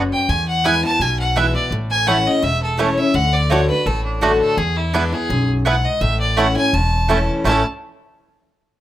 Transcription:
Already playing: upright bass F#1, steel-string acoustic guitar F#2
0.13 fiddle G5
0.29 upright bass E2, steel-string acoustic guitar E2, fiddle G#5
0.48 fiddle F#5
0.64 steel-string acoustic guitar E3 G#3 B3 E4, mandolin B3 E4 B4 G#5, five-string banjo B3 E4, fiddle G#5
0.84 steel-string acoustic guitar B3 E4, fiddle A5
1.00 upright bass B1, steel-string acoustic guitar B2, fiddle G#5
1.20 fiddle F#5
1.36 steel-string acoustic guitar E3 G#3 B3 E4, mandolin B3 E4 B4 G#5, five-string banjo B3 E4, fiddle E5
1.55 steel-string acoustic guitar B3 E4, fiddle D5
1.71 upright bass A1, steel-string acoustic guitar A2
1.91 fiddle G#5
2.07 steel-string acoustic guitar E3 A3 C#4 E4, mandolin A3 E4 C#5 A5, five-string banjo A3 C#4 E4, fiddle F#5
2.25 steel-string acoustic guitar C#4 E4, fiddle D#5
2.42 upright bass E1, steel-string acoustic guitar E2, fiddle E5
2.63 fiddle A4
2.77 steel-string acoustic guitar E3 A3 C#4 E4, mandolin A3 E4 C#5 A5, five-string banjo A3 C#4 E4, fiddle C#5
2.97 steel-string acoustic guitar C#4 E4, fiddle E5
3.14 upright bass D2, steel-string acoustic guitar D3, fiddle F#5
3.33 fiddle D5
3.50 steel-string acoustic guitar D3 A3 D4 F#4, mandolin A3 F#4 D5 F#5, five-string banjo A3 D4 F#4, fiddle C#5
3.69 steel-string acoustic guitar D4 F#4, fiddle B4
3.86 upright bass A1, steel-string acoustic guitar A2, fiddle A4
4.05 fiddle D4
4.21 steel-string acoustic guitar D3 A3 D4 F#4, mandolin A3 F#4 D5 F#5, five-string banjo A3 D4 F#4, fiddle F#4
4.41 fiddle A4
4.57 upright bass E2, steel-string acoustic guitar E2, fiddle G#4
4.77 fiddle E4
4.93 steel-string acoustic guitar E3 G#3 B3 E4, mandolin B3 E4 B4 G#5, five-string banjo B3 E4, fiddle D4
5.12 steel-string acoustic guitar B3 E4, fiddle G#4
5.30 upright bass B1, steel-string acoustic guitar F#2
5.65 steel-string acoustic guitar G#2, mandolin B3 E4 B4 G#5, five-string banjo B3 E4, fiddle F#5
5.85 fiddle D#5
6.01 upright bass A1, steel-string acoustic guitar A2, fiddle E5
6.20 fiddle D5
6.37 steel-string acoustic guitar E3 A3 C#4 E4, mandolin A3 E4 C#5 A5, five-string banjo A3 C#4 E4, fiddle F#5
6.56 steel-string acoustic guitar C#4 E4, fiddle G#5
6.73 upright bass E1, steel-string acoustic guitar E2, fiddle A5
7.08 steel-string acoustic guitar E3 A3 C#4 E4, mandolin A3 E4 C#5 A5, five-string banjo A3 C#4 E4
7.44 upright bass A1, steel-string acoustic guitar A2 E3 A3 C#4 E4, mandolin A3 E4 C#5 A5, five-string banjo A3 C#4, fiddle A5
7.50 five-string banjo E4 A4

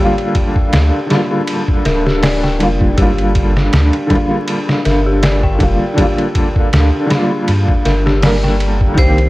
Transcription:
Already playing: felt piano D3 G3 F4, synth bell D4 A#4 D5 G5
0.00 felt piano A#3 F4, synth bell G4
0.18 ride
0.35 kick, ride
0.56 kick
0.73 sub bass D2, snare, ride
1.06 felt piano D3 G3, ride
1.11 felt piano A#3, synth bell D4, snare
1.15 felt piano F4
1.31 synth bell D4
1.47 ride
1.68 kick
1.85 sub bass D1, synth bell A#4, snare, ride
2.06 synth bell G4, snare
2.23 synth bell D5, snare, open hi-hat
2.43 synth bell G5, snare
2.59 sub bass F1, felt piano D3 G3 A#3, ride
2.63 felt piano F4
2.81 kick
2.94 felt piano D3 G3, synth bell G4, kick, ride
2.98 sub bass G1, felt piano A#3
3.02 felt piano F4
3.18 ride
3.35 kick, ride
3.57 snare
3.73 sub bass D2, snare, ride
3.93 ride
4.07 felt piano D3 G3, synth bell D4, kick, ride
4.12 felt piano A#3 F4
4.31 synth bell D4
4.48 ride
4.69 snare
4.85 sub bass G1, synth bell A#4, snare, ride
5.06 synth bell G4
5.23 synth bell D5, snare, ride
5.43 synth bell G5, kick
5.59 sub bass F1, felt piano D3 G3 A#3, kick, ride
5.63 felt piano F4
5.94 felt piano D3 G3, kick, ride
5.98 felt piano A#3, synth bell G4
6.02 felt piano F4
6.18 ride
6.35 kick, ride
6.56 kick
6.73 sub bass D2, snare, ride
7.06 felt piano D3 G3, ride
7.11 felt piano A#3, synth bell D4, snare
7.15 felt piano F4
7.31 synth bell D4
7.48 sub bass G2, ride
7.68 kick
7.85 sub bass G1, synth bell A#4, snare, ride
8.06 synth bell G4, snare
8.21 felt piano D3 G3 A#3, synth bell D5, snare, open hi-hat
8.25 felt piano A#4
8.43 synth bell G5, snare
8.60 ride
8.81 kick
8.94 felt piano D#3 A#3, ambient pad D#3 C4 A#4, kick, ride
8.98 sub bass C2, felt piano C4, synth bell G4, vibraphone C5
9.02 felt piano G4
9.18 ride

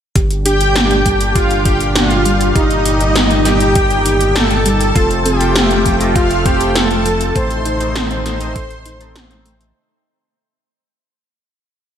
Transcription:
0.16 analog synth bass G1, analog synth pad A#2 D3 G3 D4 G4, synth arpeggio sound G4, kick, closed hi-hat
0.31 closed hi-hat
0.45 synth arpeggio sound D4, supersaw synth G4, string machine G5, closed hi-hat
0.61 closed hi-hat
0.76 synth arpeggio sound A#3, snare, closed hi-hat
0.91 closed hi-hat
1.06 synth arpeggio sound G3, kick, closed hi-hat
1.21 closed hi-hat
1.35 supersaw synth F4, synth arpeggio sound G4, string machine F5, kick, closed hi-hat
1.51 closed hi-hat
1.65 synth arpeggio sound D4, supersaw synth G4, string machine G5, kick, closed hi-hat
1.81 closed hi-hat
1.95 synth arpeggio sound A#3, supersaw synth F4, string machine F5, snare, closed hi-hat
2.10 closed hi-hat
2.26 synth arpeggio sound G3, closed hi-hat
2.41 closed hi-hat
2.55 analog synth bass G1, analog synth pad D#3 D#4, supersaw synth D#4, synth arpeggio sound G4, string machine D#5, kick, closed hi-hat
2.71 closed hi-hat
2.85 synth arpeggio sound D#4, closed hi-hat
3.01 closed hi-hat
3.16 synth arpeggio sound A#3, snare, closed hi-hat
3.31 closed hi-hat
3.45 synth arpeggio sound G3, supersaw synth G4, string machine G5, snare, closed hi-hat
3.60 closed hi-hat
3.75 synth arpeggio sound G4, kick, closed hi-hat
3.90 closed hi-hat
4.06 synth arpeggio sound D#4, closed hi-hat
4.21 closed hi-hat
4.35 synth arpeggio sound A#3, supersaw synth A4, string machine A5, snare, closed hi-hat
4.51 closed hi-hat
4.65 synth arpeggio sound G3, supersaw synth A4, string machine A5, closed hi-hat
4.81 closed hi-hat
4.96 analog synth bass F1, analog synth pad C3 F3 A3 F4 A4, analog polysynth A3 C4 F4 A4 C5, synth arpeggio sound F4, kick, closed hi-hat
5.11 closed hi-hat
5.25 synth arpeggio sound C4, supersaw synth G4, string machine G5, closed hi-hat
5.40 analog polysynth A3 C4 F4 A4 C5, closed hi-hat
5.56 synth arpeggio sound A3, snare, closed hi-hat
5.71 closed hi-hat
5.86 synth arpeggio sound F3, kick, closed hi-hat
6.01 analog polysynth A3 C4 F4 A4 D#5, closed hi-hat
6.15 supersaw synth F4, synth arpeggio sound F4, string machine F5, kick, closed hi-hat
6.31 closed hi-hat
6.45 analog polysynth A3 C4 F4 A4 C5, synth arpeggio sound C4, supersaw synth G4, string machine G5, kick, closed hi-hat
6.61 closed hi-hat
6.75 synth arpeggio sound A3, supersaw synth A4, string machine A5, snare, closed hi-hat
6.91 analog polysynth A3 C4 F4 A4 C5, closed hi-hat
7.06 synth arpeggio sound F3, closed hi-hat
7.21 closed hi-hat
7.35 analog synth bass A1, analog synth pad D#3 D#4, analog polysynth A3 C4 D#4 A4 C5, synth arpeggio sound A4, supersaw synth C5, string machine C6, kick, closed hi-hat
7.51 closed hi-hat
7.66 synth arpeggio sound D#4, closed hi-hat
7.81 analog polysynth A3 C4 D#4 A4 C5, closed hi-hat
7.96 synth arpeggio sound C4, snare, closed hi-hat
8.11 closed hi-hat
8.25 synth arpeggio sound A3, supersaw synth C5, string machine C6, snare, closed hi-hat
8.41 analog polysynth A3 C4 D#4 A4 D#5, closed hi-hat
8.56 synth arpeggio sound A4, kick, closed hi-hat
8.71 closed hi-hat
8.86 synth arpeggio sound D#4, closed hi-hat
9.01 analog polysynth A3 C4 D#4 A4 C5, closed hi-hat
9.16 synth arpeggio sound C4, snare, closed hi-hat
9.31 analog polysynth A3 C4 D#4 A4 C5, closed hi-hat
9.46 synth arpeggio sound A3, closed hi-hat
9.61 closed hi-hat

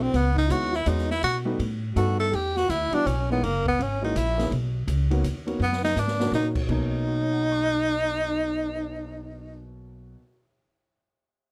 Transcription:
Already playing: upright bass B1, grand piano A3 C4 D4 E4 F#4
0.00 trombone C4, tenor saxophone C4
0.13 upright bass C#2, trombone B3, tenor saxophone B3, kick, snare, ride
0.35 trombone D#4, tenor saxophone D#4, kick
0.49 upright bass D#2, grand piano G#3 B3 C#4 D#4 E4, trombone F#4, tenor saxophone F#4, kick, hi-hat pedal, ride
0.73 trombone E4, tenor saxophone E4, snare
0.86 upright bass E2, grand piano G#3 B3 C#4 D#4 F#4, trombone D#4, tenor saxophone D#4, kick, hi-hat pedal, ride
0.98 snare
1.10 trombone E4, tenor saxophone E4, snare
1.23 upright bass B2, trombone F#4, tenor saxophone F#4, kick, ride
1.45 grand piano G3 A3 B3 D#4 F#4
1.59 upright bass A2, kick, ride
1.95 upright bass G2, grand piano G3 A3 B3 D#4 A4, trombone F#4, tenor saxophone F#4, kick, hi-hat pedal, ride
2.19 trombone A4, tenor saxophone A4
2.32 upright bass E2, trombone G4, tenor saxophone G4, kick, ride
2.54 trombone F#4, tenor saxophone F#4, snare
2.68 upright bass D2, trombone E4, tenor saxophone E4, kick, hi-hat pedal, ride
2.91 grand piano E3 G3 B3 D4 F#4, trombone D4, tenor saxophone D4, muted upright bass stroke, ride
3.06 upright bass B1, trombone C#4, tenor saxophone C#4, kick, hi-hat pedal, ride
3.30 grand piano E3 G#3 A#3 C#4 D#4, trombone B3, tenor saxophone B3
3.43 upright bass F#1, trombone A#3, tenor saxophone A#3, kick, ride
3.65 trombone B3, tenor saxophone B3, kick
3.79 upright bass G#1, trombone C#4, tenor saxophone C#4, kick, ride
4.02 grand piano E3 G#3 A#3 C#4 F#4, trombone D#4, tenor saxophone D#4
4.15 upright bass A#1, trombone E4, tenor saxophone E4, kick, hi-hat pedal, ride
4.37 grand piano D#3 A#3 B3 C#4 G#4, snare, ride
4.51 upright bass B1, kick, ride
4.88 upright bass C#2, kick, hi-hat pedal, ride
5.10 grand piano D#3 A#3 B3 C#4 F#4, ride
5.24 upright bass D#2, kick, hi-hat pedal, ride
5.46 grand piano D#3 A#3 B3 C#4 F#4, ride
5.60 upright bass F#2, trombone B3, tenor saxophone B3
5.73 snare
5.82 trombone D#4, tenor saxophone D#4, snare
5.96 upright bass G#2, trombone D4, tenor saxophone D4, snare, hi-hat pedal
6.08 snare
6.19 grand piano D#3 A#3 C#4 D#4 F#4, snare
6.32 upright bass A#2, tenor saxophone D#4, trombone D#4, snare
6.55 kick, crash
6.68 upright bass B1, grand piano B2 F#3 A#3 C#4 D#4, trombone D#4, tenor saxophone D#4, kick, crash
6.92 cymbal swell
7.07 grand piano F#4
7.14 grand piano A#4
7.23 grand piano C#5
7.31 grand piano F#5
7.41 grand piano A#5
7.52 grand piano C#6
7.64 grand piano F#6

